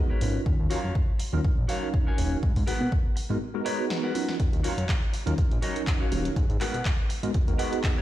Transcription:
Already playing: G#3 B3 D#4 F#4 A#5
0.09 A#4 B4 C#5
0.21 G#1 F#3 C#4 D#4 F4 A#4, open hi-hat
0.46 D#2, kick
0.60 D#2
0.70 F#3 C#4 D#4 F4 F#4 A#4 C#5 F5, open hi-hat
0.84 F#2
0.95 kick
1.19 muted clean electric guitar stroke, open hi-hat
1.33 D#2 F#3 C#4 D#4 F4 A#4, muted clean electric guitar stroke
1.44 A#1, kick
1.58 A#1
1.68 F#3 C#4 D#4 F#4 A#4 C#5 F5, open hi-hat
1.94 kick
2.07 F#3 C#4 D#4 F#4 A#4 C#5 F5 G#5
2.18 D#1, open hi-hat
2.43 G#2, kick
2.56 G#2, kick, open hi-hat
2.67 G#3 B3 D#4 F#4 A#4 B4 F#5, open hi-hat
2.80 B2
2.92 kick
3.16 muted clean electric guitar stroke, open hi-hat
3.29 G#2 G#3 B3 D#4 F#4 A#4, muted clean electric guitar stroke
3.54 G#3 B3 D#4 F#4 A#4
3.65 G#3 B3 D#4 F#4 A#4 B4 C#5 A#5, open hi-hat
3.90 snare
4.03 A#4 B4 F#5
4.15 F#3 C#4 D#4 F4 A#4, open hi-hat
4.28 snare
4.40 D#2, kick, closed hi-hat
4.53 D#2, closed hi-hat
4.63 F#3 C#4 D#4 F4 F#4 A#4 C#5 F5, open hi-hat
4.78 F#2, closed hi-hat
4.89 kick, clap, closed hi-hat
5.13 muted clean electric guitar stroke, open hi-hat
5.26 D#2 F#3 C#4 D#4 F4 A#4, muted clean electric guitar stroke, closed hi-hat
5.38 A#1, kick, closed hi-hat
5.51 A#1, closed hi-hat
5.62 F#3 C#4 D#4 F#4 A#4 C#5 D#5, open hi-hat
5.76 closed hi-hat
5.87 kick, clap, closed hi-hat
6.00 F#3 C#4 D#4 F#4 A#4 C#5 F5
6.12 D#1, open hi-hat
6.25 closed hi-hat
6.36 G#2, kick, closed hi-hat
6.49 G#2, closed hi-hat
6.60 G#3 B3 D#4 F#4 A#4 B4 F#5, clap, open hi-hat
6.74 B2, closed hi-hat
6.85 kick, clap, closed hi-hat
7.09 muted clean electric guitar stroke, open hi-hat
7.23 G#2 G#3 B3 D#4 F#4 A#4, muted clean electric guitar stroke, closed hi-hat
7.34 kick, closed hi-hat
7.47 D#2 G#3 B3 D#4 F#4 A#4, closed hi-hat
7.58 G#3 B3 D#4 F#4 A#4 B4 F#5 A#5, open hi-hat
7.73 closed hi-hat
7.84 kick, clap, closed hi-hat
7.96 A#4 B4 C#5

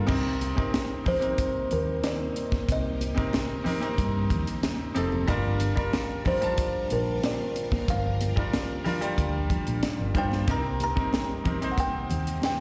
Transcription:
Already playing: G3 F4 A4 A#4
0.07 C2 C3 G3 A#3 C4 D#4 A#4, kick, crash
0.41 closed hi-hat, muted conga
0.55 C3 C4 D#4 A#4, kick
0.74 snare, closed hi-hat, high conga
1.04 C3 C4 D#4 A#4 C5, kick, open hi-hat, low conga
1.20 C3 C4 D#4 A#4, closed hi-hat
1.38 kick, closed hi-hat
1.71 D#2 A#4, closed hi-hat, muted conga
2.03 D5, snare, closed hi-hat, high conga
2.36 closed hi-hat
2.52 kick, snare, high conga
2.69 C2 D#5, kick, closed hi-hat
3.01 closed hi-hat, muted conga
3.15 C3 C4 D#4 A#4, kick
3.33 snare, closed hi-hat, high conga
3.64 C3 C4 D#4 A#4, open hi-hat, low conga
3.80 C3 C4 D#4 A#4, closed hi-hat
3.98 G2, kick, closed hi-hat
4.30 D#2, kick, closed hi-hat, muted conga, low conga
4.47 closed hi-hat
4.63 snare, closed hi-hat, high conga
4.95 F1 C3 C4 D#4 A4, closed hi-hat
5.12 high conga
5.27 G1 G3 D4 F4 A#4, kick, closed hi-hat
5.60 closed hi-hat, muted conga
5.75 G3 D4 F4 A#4, kick
5.93 snare, closed hi-hat, high conga
6.25 G3 D4 F4 A#4 C5, kick, open hi-hat, muted conga, low conga
6.41 G3 D4 F4 A5, closed hi-hat
6.58 kick, closed hi-hat
6.90 A#1 A#4, closed hi-hat, muted conga
7.23 D5, snare, closed hi-hat, high conga
7.56 closed hi-hat
7.72 kick, snare, high conga
7.88 G1 F5, kick, closed hi-hat
8.21 closed hi-hat, muted conga
8.36 G3 D4 F4 A#4, kick
8.53 snare, closed hi-hat, high conga
8.84 G3 D4 F4 A#4, open hi-hat, low conga
9.01 G3 D4 F4 G4, closed hi-hat
9.18 D2, kick, closed hi-hat
9.50 kick, closed hi-hat, muted conga, low conga
9.67 A#1, closed hi-hat
9.83 muted fingered electric bass stroke, snare, closed hi-hat, high conga
10.01 G1
10.14 G2 G3 D4 F4 C5 G5, kick, closed hi-hat
10.32 snare, high conga
10.47 C2 C3 G3 A#3 C4 D#4 A#4 A#5, kick, closed hi-hat
10.80 A#5, closed hi-hat, muted conga
10.96 C3 C4 D#4 A#4, kick
11.13 snare, closed hi-hat, high conga
11.44 C3 C4 D#4 A#4, kick, closed hi-hat, low conga
11.61 C3 C4 D#4 C5, closed hi-hat
11.72 F#5
11.78 G5, kick, closed hi-hat
12.10 D#2, closed hi-hat, muted conga
12.27 closed hi-hat
12.42 G5, snare, closed hi-hat, high conga

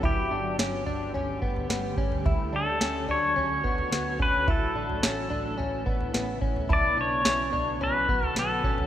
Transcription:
Already playing: D3
0.03 G1 G3 A3 E4 G4, kick, floor tom
0.31 G1 D4
0.59 G1 C#4, snare
0.86 G1 D4, floor tom
1.14 G1 C#4, floor tom
1.42 G1 B3, kick
1.56 floor tom
1.69 G1 B3, snare
1.97 G1 C#4, kick
2.12 floor tom
2.25 D2 F#3 E4 F#4, kick, floor tom
2.53 D2 D4 A4
2.81 D2 C#4, snare
3.08 D2 D4 C#5, floor tom
3.36 D2 C#4, floor tom
3.64 D2 B3, kick
3.78 floor tom
3.92 D2 B3, snare
4.19 D2 C#4 B4, kick
4.34 floor tom
4.48 A1 C#3 B3 E4 A4, kick, floor tom
4.75 A1 D4
4.89 floor tom
5.03 A1 C#4, snare
5.30 A1 D4, floor tom
5.58 A1 C#4, floor tom
5.86 A1 B3, kick
6.01 floor tom
6.14 A1 B3, snare
6.41 A1 C#4, kick
6.56 floor tom
6.69 B1 D3 F#3 E4 F#4 D5 A5, kick, floor tom
6.97 B1 D4 C#5
7.25 B1 C#4, snare
7.53 B1 D4, floor tom
7.81 B1 C#4 B4, floor tom
8.09 B1 B3, kick
8.23 floor tom
8.27 A4
8.36 B1 B3 A4, snare
8.64 B1 C#4, kick
8.78 floor tom

